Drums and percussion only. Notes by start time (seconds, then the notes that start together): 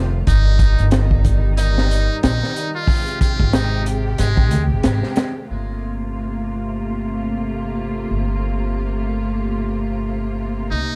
0.27 kick, closed hi-hat
0.59 kick, closed hi-hat
0.78 closed hi-hat
0.91 snare, closed hi-hat
1.11 kick
1.25 kick, closed hi-hat
1.57 closed hi-hat
1.78 snare
1.91 closed hi-hat
2.23 snare, closed hi-hat
2.44 snare
2.56 closed hi-hat
2.87 kick, open hi-hat
3.08 closed hi-hat
3.21 kick, closed hi-hat
3.40 kick
3.53 snare, closed hi-hat
3.86 closed hi-hat
4.18 closed hi-hat
4.37 kick
4.51 closed hi-hat
4.83 snare, closed hi-hat
5.03 snare
5.16 snare, closed hi-hat